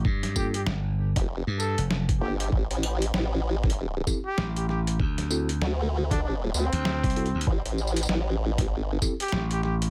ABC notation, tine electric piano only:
X:1
M:4/4
L:1/16
Q:"Swing 16ths" 1/4=97
K:Dm
V:1 name="Tine electric piano"
z2 [B,DFA] z8 z3 [B,DFA]2 | z8 z2 [CEGA]2 z4 | z2 [CE^FA] z8 z3 [CEFA]2 | z8 z2 [CEGA]2 z4 |]